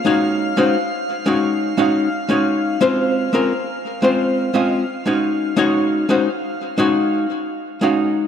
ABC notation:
X:1
M:4/4
L:1/16
Q:1/4=87
K:Abmix
V:1 name="Synth texture"
[ff']16- | [ff']16- | [ff']8 z8 |]
V:2 name="Hollow-body jazz guitar"
[A,DEGd]3 [A,DEGc] z3 [A,DEGd]3 [A,DEGf]2 z [A,DEGd]3 | [A,CDFc]3 [A,CDFB] z3 [A,CDFc]3 [A,CDFe]2 z [A,DEGd]3 | [A,DEGd]3 [A,DEGc] z3 [A,DEGd]3 z3 [A,DEGf]3 |]